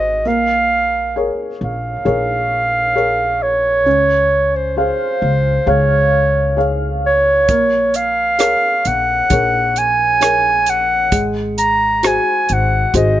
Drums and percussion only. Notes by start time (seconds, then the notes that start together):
7.49 kick, closed hi-hat
7.94 closed hi-hat
8.39 cross-stick, closed hi-hat
8.85 closed hi-hat
9.30 kick, closed hi-hat
9.76 closed hi-hat
10.21 cross-stick, closed hi-hat
10.66 closed hi-hat
11.12 kick, closed hi-hat
11.58 closed hi-hat
12.03 cross-stick, closed hi-hat
12.49 closed hi-hat
12.94 kick, closed hi-hat